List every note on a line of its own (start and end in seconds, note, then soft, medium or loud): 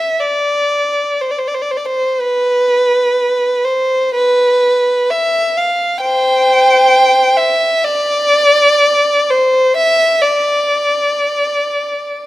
0.00 0.21 E5 soft
0.21 1.21 D5 soft
1.21 1.30 C5 soft
1.31 1.38 D5 soft
1.39 1.46 C5 soft
1.48 1.55 D5 soft
1.54 1.62 C5 soft
1.62 1.70 D5 soft
1.71 1.78 C5 soft
1.77 1.85 D5 soft
1.85 2.18 C5 soft
2.20 3.65 B4 medium
3.65 4.15 C5 soft
4.15 5.07 B4 medium
5.10 5.56 E5 medium
5.57 6.03 F5 soft
6.01 7.34 C5 medium
6.01 7.35 G5 medium
7.37 7.84 E5 medium
7.85 9.28 D5 medium
9.30 9.76 C5 medium
9.76 10.21 E5 medium
10.22 12.27 D5 medium